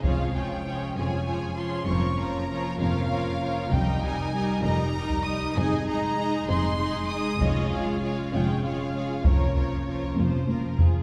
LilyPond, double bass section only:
\new Staff \with { instrumentName = "Double bass section" } { \clef bass \time 6/8 \key des \lydian \tempo 4. = 65 f,,4. f,,4. | f,,4. f,,4. | f,,4. f,,4. | f,,4. f,,4. |
f,,4. f,,4. | f,,4. f,,4. | }